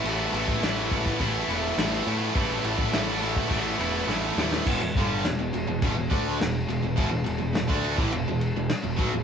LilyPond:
<<
  \new Staff \with { instrumentName = "Distorted electric guitar" } { \clef bass \time 4/4 \key a \major \tempo 4 = 104 <a, e a b e'>8 <a, e a b e'>8 <a, e a b e'>8 <a, e a b e'>8 <a, e a b e'>8 <a, e a b e'>8 <a, e a b e'>8 <a, e a b e'>8 | <a, e a b e'>8 <a, e a b e'>8 <a, e a b e'>8 <a, e a b e'>8 <a, e a b e'>8 <a, e a b e'>8 <a, e a b e'>8 <a, e a b e'>8 | <e, b,>16 <e, b,>16 <g, d g>8 <e, b,>16 <e, b,>16 <e, b,>16 <e, b,>16 <e, b,>16 <e, b,>16 <d a d'>8 <e, b,>8 <e, b,>16 <e, b,>16 | <e, b,>16 <e, b,>16 <e, b,>16 <e, b,>16 <e, b,>16 <d a d'>8 <a, e>16 <e, b,>16 <e, b,>8 <e, b,>16 r16 <e, b,>16 <b, fis>16 <e, b,>16 | }
  \new Staff \with { instrumentName = "Picked electric bass" } { \clef bass \time 4/4 \key a \major a,,8 a,,8 a,,4 a,,8 e,,8 a,,8 a,8 | a,,8 a,,8 a,,4 a,,8 e,,8 a,,8 dis,8 | e,,16 e,,16 g,,8 e,,16 e,,16 e,,16 e,,16 e,,16 e,,16 d,8 e,,8 e,,16 e,,16 | e,,16 e,,16 e,,16 e,,16 e,,16 d,8 a,,16 e,,16 e,,8 e,,16 r16 e,,16 b,,16 e,,16 | }
  \new DrumStaff \with { instrumentName = "Drums" } \drummode { \time 4/4 cymc8 cymc16 bd16 <cymc sn>8 <cymc bd>16 <bd sn>16 <cymc bd>8 cymc8 <cymc sn>8 cymc8 | <cymc bd>16 sn16 cymc16 bd16 <cymc sn>8 cymc16 bd16 <cymc bd>8 cymc8 sn8 sn16 sn16 | <cymc bd>8 <cymc bd>8 <cymc sn>8 cymc8 <cymc bd>8 <cymc bd>8 <cymc sn>8 cymc8 | <cymc bd>8 cymc8 <cymc sn>16 bd16 cymc16 bd16 cymc8 cymc8 <cymc sn>8 <cymc bd>8 | }
>>